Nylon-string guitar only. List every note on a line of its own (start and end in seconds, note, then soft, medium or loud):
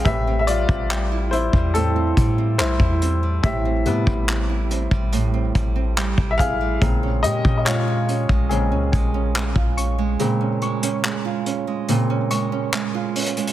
0.00 0.14 G#3 medium
0.00 0.14 C#4 medium
0.00 0.14 F4 medium
0.06 1.73 A2 medium
0.27 0.68 C4 medium
0.48 0.89 G3 medium
0.69 1.31 C4 medium
0.91 1.53 G3 medium
1.12 2.79 E4 medium
1.33 1.95 C4 medium
1.54 2.16 G3 medium
1.75 3.43 A2 medium
1.96 2.37 C4 medium
2.17 2.58 G3 medium
2.38 3.01 C4 medium
2.59 3.22 G3 medium
2.80 4.48 E4 medium
3.02 3.64 C4 medium
3.23 3.85 G3 medium
3.44 5.11 A2 medium
3.65 4.06 C4 medium
3.86 4.27 G3 medium
4.07 4.69 C4 medium
4.28 4.90 G3 medium
4.50 6.17 E4 medium
4.71 5.32 C4 medium
4.91 5.54 G3 medium
5.12 6.81 A2 medium
5.34 5.74 C4 medium
5.55 5.96 G3 medium
5.76 6.38 C4 medium
5.97 6.60 G3 medium
6.18 6.90 E4 medium
6.40 6.90 C4 medium
6.61 6.90 G3 medium
6.82 8.50 A#2 medium
7.03 7.44 C#4 medium
7.24 7.65 G#3 medium
7.45 8.07 C#4 medium
7.66 8.29 G#3 medium
7.88 9.55 F4 medium
8.08 8.71 C#4 medium
8.30 8.92 G#3 medium
8.51 10.19 A#2 medium
8.72 9.13 C#4 medium
8.93 9.34 G#3 medium
9.14 9.76 C#4 medium
9.35 9.97 G#3 medium
9.56 11.24 F4 medium
9.78 10.39 C#4 medium
9.98 10.61 G#3 medium
10.20 11.87 A#2 medium
10.41 10.82 C#4 medium
10.62 11.03 G#3 medium
10.83 11.45 C#4 medium
11.04 11.66 G#3 medium
11.25 12.93 F4 medium
11.46 12.09 C#4 medium
11.67 12.30 G#3 medium
11.89 13.53 A#2 medium
12.10 12.51 C#4 medium
12.31 12.72 G#3 medium
12.52 13.15 C#4 medium
12.73 13.36 G#3 medium
12.95 13.53 F4 medium
13.16 13.53 C#4 medium
13.37 13.53 G#3 medium